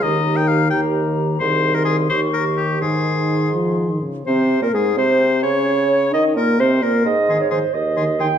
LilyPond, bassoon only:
\new Staff \with { instrumentName = "Bassoon" } { \clef bass \time 6/8 \key aes \major \tempo 4. = 86 ees,2. | c,4. ees,4. | aes,2~ aes,8 r8 | c8. bes,16 aes,8 c4 des8~ |
des4 ees8 bes,8 c8 bes,8 | aes,4. ees,4. | }